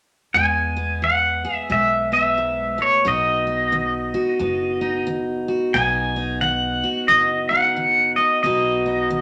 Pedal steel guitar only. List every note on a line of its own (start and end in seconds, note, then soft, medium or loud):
0.34 0.98 G#5 medium
1.04 1.56 F#5 medium
1.56 1.72 E5 medium
1.72 2.12 E5 medium
2.13 2.82 E5 medium
2.82 3.07 C#5 medium
3.08 5.05 D#5 medium
5.74 6.41 G#5 medium
6.41 7.05 F#5 medium
7.08 7.49 D#5 medium
7.49 8.16 F#5 medium
8.16 8.42 D#5 medium
8.43 9.21 D#5 medium